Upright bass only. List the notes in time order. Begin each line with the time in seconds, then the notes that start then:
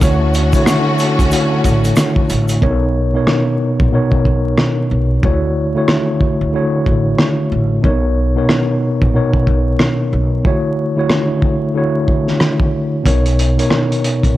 0.02 D2
1.19 C#2
1.65 A1
2.30 A1
2.62 B1
3.80 A#1
4.12 muted upright bass stroke
4.26 B1
4.91 B1
5.23 D2
6.41 C#2
6.87 A1
7.52 A1
7.84 B1
9.02 A#1
9.34 muted upright bass stroke
9.47 B1
10.13 B1
13.06 B1
14.24 A#1